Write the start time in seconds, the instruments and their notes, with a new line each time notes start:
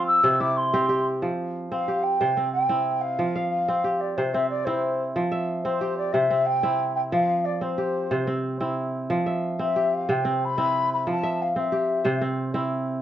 Already playing: kora F3 C4 F4 G4 C5 F5
0.06 flute E6
0.24 kora C3 C4
0.40 kora E4, flute D6
0.57 flute C6
0.73 kora C4 G4
0.89 kora G4
1.22 kora F3
1.71 kora C4, flute F5
1.88 kora G4
2.03 flute G5
2.20 kora C3 C5
2.37 kora C4
2.52 flute G5
2.69 kora C4 E4
3.01 flute F5
3.19 kora F3
3.36 kora F5
3.50 flute F5
3.68 kora C4
3.84 kora G4
4.00 flute D5
4.17 kora C3 C5, flute C5
4.33 kora C4, flute E5
4.49 flute D5
4.65 kora C4 E4, flute C5
5.16 kora F3
5.32 kora E5
5.64 kora C4, flute C5
5.81 kora G4
5.98 flute D5
6.12 kora C3 C5, flute E5
6.30 kora C4
6.46 flute G5
6.63 kora C4 E4
6.95 flute G5
7.12 kora F3, flute F5
7.45 flute D5
7.61 kora C4, flute C5
7.78 kora G4
8.11 kora C3 C5
8.27 kora C4
8.61 kora C4 E4
9.10 kora F3
9.26 kora E5
9.59 kora C4, flute E5
9.76 kora G4
9.93 flute F5
10.09 kora C3 C5, flute G5
10.25 kora C4
10.45 flute B5
10.58 kora C4 E4
10.93 flute B5
11.07 kora F3, flute A5
11.23 kora E5
11.42 flute F5
11.56 kora C4, flute E5
11.72 kora G4
12.04 kora C3 C5
12.21 kora C4
12.54 kora C4 E4